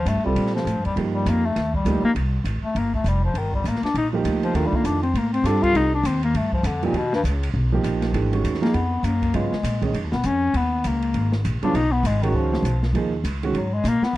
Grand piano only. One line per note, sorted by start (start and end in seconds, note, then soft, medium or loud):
0.24 0.64 G3 medium
0.24 0.64 C4 medium
0.24 0.64 F4 medium
0.24 0.64 A4 medium
0.97 1.41 F3 medium
0.97 1.41 A#3 medium
0.97 1.42 D#4 medium
0.97 1.42 G4 medium
1.86 2.02 F3 medium
1.86 2.02 A#3 medium
1.86 2.03 D#4 medium
1.86 2.03 G4 medium
4.13 4.52 F3 medium
4.13 4.53 A#3 medium
4.13 4.53 D#4 medium
4.13 4.53 G4 medium
4.55 4.99 D#3 medium
4.55 5.00 A3 medium
4.55 5.00 D4 medium
4.55 5.00 F4 medium
5.44 5.89 G3 medium
5.44 5.89 C4 medium
5.44 5.90 F4 medium
5.44 5.90 A4 medium
6.83 6.93 F3 medium
6.83 6.94 A#3 medium
6.83 6.94 D#4 medium
6.83 6.94 G4 medium
7.72 8.12 F3 medium
7.72 8.12 A#3 medium
7.72 8.12 D#4 medium
7.72 8.13 G4 medium
8.13 8.30 E3 medium
8.13 8.30 A3 medium
8.13 8.31 D4 medium
8.13 8.31 G4 medium
8.32 8.58 D#3 medium
8.32 8.59 G#3 medium
8.32 8.59 C#4 medium
8.32 8.59 F#4 medium
8.61 8.72 F3 medium
8.61 8.73 A#3 medium
8.61 8.73 D#4 medium
8.61 8.73 G#4 medium
9.34 9.50 C#3 medium
9.34 9.50 F#3 medium
9.34 9.51 B3 medium
9.34 9.51 F4 medium
9.81 9.93 D#3 medium
9.81 9.93 G#3 medium
9.81 9.93 C#4 medium
9.81 9.93 D#4 medium
11.63 11.73 C#3 medium
11.63 11.74 F#3 medium
11.63 11.74 B3 medium
11.63 11.74 F4 medium
12.23 12.62 D#3 medium
12.23 12.62 G#3 medium
12.23 12.63 C#4 medium
12.23 12.63 F#4 medium
12.95 13.11 F3 medium
12.95 13.11 A#3 medium
12.95 13.11 D#4 medium
12.95 13.12 G#4 medium
13.43 13.53 D#3 medium
13.43 13.54 G#3 medium
13.43 13.54 C#4 medium
13.43 13.54 F#4 medium